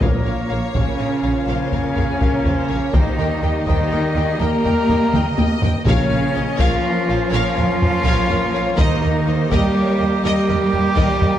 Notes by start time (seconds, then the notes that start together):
0.01 A#1 A#2 F3 A#3 F4 A#4 C#5 F5, taiko
0.26 A#1 A#4 C#5 F5
0.49 A#1 A#4 C#5 F5
0.74 A#1 C#3 C#4 A#4 C#5 F5, taiko
0.99 A#1 A#4 C#5 F5
1.23 A#1 A#4 C#5 F5
1.47 A#1 C#3 C#4 A#4 C5 C#5 F5
1.71 A#1 A#4 C#5 F5, taiko low
1.95 A#1 G#4 A#4 C#5 F5, taiko low
2.20 A#1 A#4 C#5 F5, taiko
2.45 A#1 A#4 C5 C#5 F5, taiko low
2.69 A#1 A#4 C#5 F5
2.93 D#2 D#3 G3 D#4 G4 A#4 C5 D#5 G5, taiko
3.18 D#2 A#4 D#5 G5
3.43 D#2 G4 A#4 D#5 G5
3.66 D#2 D#3 D#4 A#4 C5 D#5 G5, taiko
3.91 D#2 A#4 D#5 G5
4.15 D#2 G#4 A#4 D#5 G5
4.39 D#2 A#3 G4 A#4 D#5 G5 A#5
4.64 D#2 A#4 D#5 G5, taiko low
4.89 D#2 A#4 D#5 G5, taiko low
5.14 D#2 A#4 D#5 G5, taiko mid
5.37 D#2 A#4 D#5 G5, taiko high
5.61 D#2 A#4 D#5 G5, taiko low
5.85 A#1 A#2 C#3 F3 A#3 C#4 A#4 C#5 F5, taiko
6.10 A#1 A#4 C#5 F5
6.34 A#1 A#4 C#5 D#5 F5
6.58 A#1 F3 F4 A#4 C#5 F5, taiko
6.84 A#4
7.07 A#1 A#4 C5 C#5 F5
7.31 A#1 F3 F4 A#4 C#5 F5
7.56 A#1 A#4 C#5 F5, taiko low
7.80 C5, taiko low
8.05 A#1 A#4 C#5 F5, taiko
8.29 A#1 A#4 C#5 F5, taiko low
8.53 A#1 A#4 C#5 F5
8.77 D#2 D#3 A#3 D#4 G4 A#4 C5 D#5, taiko
9.02 D#2 A#4 D#5
9.26 D#2 A#4 C5 D#5
9.49 D#2 G3 G4 A#4 D#5 G5, taiko
9.76 C#5
10.00 D#2 A#4 C5 D#5
10.23 D#2 G3 G4 A#4 D#5 G5
10.49 D#2 A#4 D#5, taiko low
10.74 taiko low
10.96 D#2 A#4 C5 D#5, taiko
11.21 D#2 A#4 D#5, taiko low